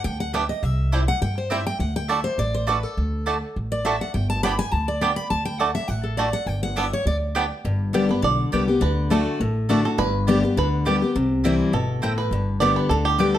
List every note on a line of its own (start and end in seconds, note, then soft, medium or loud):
0.04 0.49 D2 medium
0.04 0.20 G5 loud
0.20 0.33 F#5 loud
0.33 0.42 G3 medium
0.33 0.44 B3 medium
0.33 0.42 B3 medium
0.33 0.42 D4 medium
0.33 0.44 G4 medium
0.33 0.44 D5 loud
0.33 0.49 E5 medium
0.33 0.44 G5 loud
0.49 0.63 D#5 medium
0.63 1.08 C2 loud
0.63 1.08 E5 medium
0.92 1.00 G3 medium
0.92 1.02 C4 medium
0.92 1.00 C4 medium
0.92 1.02 E4 loud
0.92 1.00 E4 medium
0.92 1.02 C5 medium
0.92 1.03 G5 loud
1.08 1.21 F#5 loud
1.22 1.66 G2 medium
1.22 1.37 G5 loud
1.38 1.51 C5 medium
1.50 1.58 G3 medium
1.50 1.60 C4 medium
1.50 1.59 C4 medium
1.50 1.60 E4 medium
1.50 1.59 E4 medium
1.50 1.61 C5 loud
1.50 1.66 E5 medium
1.50 1.61 G5 loud
1.67 1.80 G5 loud
1.80 2.24 D2 loud
1.80 1.95 F#5 medium
1.96 2.09 G5 loud
2.08 2.19 A3 medium
2.08 2.17 A3 medium
2.08 2.13 D4 medium
2.08 2.19 F#4 medium
2.08 2.19 D5 medium
2.08 2.25 E5 medium
2.08 2.19 A5 medium
2.24 2.38 C5 medium
2.38 2.83 A1 medium
2.38 2.54 D5 medium
2.54 2.68 C5 medium
2.67 2.77 A3 loud
2.67 2.75 A3 medium
2.67 2.71 D4 medium
2.67 2.77 F#4 loud
2.67 2.83 B4 medium
2.67 2.77 D5 loud
2.67 2.77 A5 loud
2.83 3.55 A4 medium
2.97 3.42 D2 loud
3.26 3.36 A3 medium
3.26 3.34 A3 medium
3.26 3.30 D4 medium
3.26 3.36 F#4 medium
3.26 3.36 D5 medium
3.26 3.36 A5 loud
3.56 4.01 A1 medium
3.72 3.85 D5 loud
3.85 3.95 A3 medium
3.85 3.92 A3 medium
3.85 3.88 D4 medium
3.85 3.95 F#4 loud
3.85 3.95 D5 loud
3.85 4.00 E5 medium
3.85 3.95 A5 loud
4.01 4.14 F#5 medium
4.14 4.59 G1 loud
4.14 4.29 G5 medium
4.30 4.43 A5 loud
4.43 4.51 G3 medium
4.43 4.53 B3 medium
4.43 4.51 B3 medium
4.43 4.51 D4 medium
4.43 4.53 G4 medium
4.43 4.53 D5 medium
4.43 4.53 G5 medium
4.43 4.58 B5 loud
4.59 4.72 G#5 loud
4.72 5.17 D2 medium
4.72 4.87 A5 loud
4.88 5.01 D5 medium
5.01 5.09 G3 medium
5.01 5.11 B3 medium
5.01 5.09 B3 medium
5.01 5.09 D4 medium
5.01 5.11 G4 loud
5.01 5.12 D5 loud
5.01 5.16 G5 medium
5.01 5.12 G5 loud
5.16 5.30 B5 loud
5.30 5.75 D2 loud
5.30 5.45 A5 medium
5.45 5.59 G5 loud
5.59 5.69 A3 medium
5.59 5.67 A3 medium
5.59 5.63 D4 medium
5.59 5.70 F#4 medium
5.59 5.70 D5 medium
5.59 5.74 F#5 loud
5.59 5.70 A5 medium
5.75 5.88 E5 loud
5.88 6.33 A1 medium
5.88 6.04 F#5 loud
6.04 6.17 A4 medium
6.17 6.28 A3 medium
6.17 6.26 A3 medium
6.17 6.22 D4 medium
6.17 6.28 F#4 loud
6.17 6.33 D5 medium
6.17 6.28 D5 loud
6.17 6.28 A5 loud
6.33 6.47 F#5 loud
6.46 6.91 G1 loud
6.46 6.62 G5 loud
6.63 6.77 F#5 loud
6.76 6.84 G3 medium
6.76 6.86 B3 medium
6.76 6.84 B3 medium
6.76 6.84 D4 medium
6.76 6.86 G4 loud
6.76 6.86 D5 medium
6.76 6.92 E5 loud
6.76 6.86 G5 medium
6.93 7.06 C#5 loud
7.06 7.50 D2 medium
7.06 7.16 D5 loud
7.35 7.43 G3 medium
7.35 7.45 B3 loud
7.35 7.43 B3 medium
7.35 7.43 D4 medium
7.35 7.45 G4 loud
7.35 7.45 D5 loud
7.35 7.45 G5 loud
7.65 8.09 G1 medium
7.65 8.20 G2 medium
7.93 8.08 D3 medium
7.93 8.09 G3 loud
7.93 8.03 B3 medium
7.93 8.09 B3 medium
7.93 8.03 G4 medium
7.93 8.08 G4 loud
7.93 8.04 D5 medium
7.93 8.04 G5 medium
8.09 8.23 B3 medium
8.09 8.22 G4 medium
8.09 8.24 B4 medium
8.22 8.48 B1 medium
8.22 8.51 D3 loud
8.22 8.78 D5 loud
8.52 8.77 C2 medium
8.52 8.67 D3 medium
8.52 8.67 G3 medium
8.52 8.62 B3 medium
8.52 8.68 B3 medium
8.52 8.62 G4 medium
8.52 8.67 G4 medium
8.52 8.62 D5 medium
8.52 8.62 G5 loud
8.68 8.82 B3 medium
8.68 8.81 G4 medium
8.81 9.26 D2 loud
8.81 9.09 D3 medium
8.81 9.12 B4 loud
9.10 9.38 D3 medium
9.10 9.20 A3 medium
9.10 9.39 A3 loud
9.10 9.39 D4 loud
9.10 9.20 F#4 medium
9.10 9.39 F#4 loud
9.10 9.53 A4 medium
9.10 9.20 D5 medium
9.10 9.20 A5 medium
9.40 9.85 A1 medium
9.40 9.96 A2 medium
9.69 9.84 D3 medium
9.69 9.79 A3 medium
9.69 9.84 A3 medium
9.69 9.84 D4 loud
9.69 9.79 F#4 medium
9.69 9.84 F#4 medium
9.69 9.79 D5 loud
9.69 9.79 A5 loud
9.85 9.99 D4 soft
9.85 9.98 F#4 medium
9.85 9.99 A4 medium
9.98 10.43 G1 loud
9.98 10.54 G2 medium
9.98 10.57 B4 loud
10.27 10.43 D3 loud
10.27 10.43 G3 loud
10.27 10.37 B3 medium
10.27 10.43 B3 loud
10.27 10.37 G4 medium
10.27 10.42 G4 loud
10.27 10.37 D5 medium
10.27 10.37 G5 medium
10.43 10.57 B3 medium
10.43 10.56 G4 medium
10.57 11.01 D2 medium
10.57 10.85 D3 medium
10.57 10.88 B4 loud
10.85 11.01 D3 medium
10.85 11.01 G3 medium
10.85 10.95 B3 medium
10.85 11.01 B3 medium
10.85 10.95 G4 medium
10.85 11.01 G4 medium
10.85 11.29 G4 medium
10.85 10.96 D5 loud
10.85 10.96 G5 loud
11.02 11.16 B3 medium
11.02 11.15 G4 medium
11.15 11.60 C2 loud
11.15 11.71 C3 medium
11.44 11.72 E3 medium
11.44 11.73 G3 loud
11.44 11.54 C4 medium
11.44 11.73 C4 medium
11.44 11.54 E4 medium
11.44 11.73 E4 loud
11.44 11.54 C5 medium
11.44 11.54 G5 medium
11.73 12.18 G1 medium
11.73 12.01 B2 medium
11.73 12.15 A4 loud
12.02 12.31 A2 medium
12.02 12.12 C4 medium
12.02 12.12 E4 medium
12.02 12.12 C5 loud
12.02 12.12 G5 loud
12.18 12.60 B4 loud
12.31 12.76 G1 medium
12.31 12.88 G2 medium
12.60 12.89 D3 loud
12.60 12.89 G3 medium
12.60 12.70 B3 medium
12.60 12.89 B3 loud
12.60 12.71 G4 medium
12.60 12.89 G4 loud
12.60 12.75 D5 loud
12.60 12.71 D5 medium
12.60 12.71 G5 medium
12.76 12.89 B4 medium
12.89 13.34 D2 medium
12.89 13.17 D3 loud
12.89 13.06 A4 medium
13.05 13.36 G4 loud
13.18 13.38 D3 medium
13.18 13.38 G3 medium
13.18 13.29 B3 loud
13.18 13.38 B3 medium
13.18 13.29 G4 medium
13.18 13.38 G4 loud
13.18 13.29 D5 medium
13.18 13.29 G5 loud
13.35 13.38 A4 medium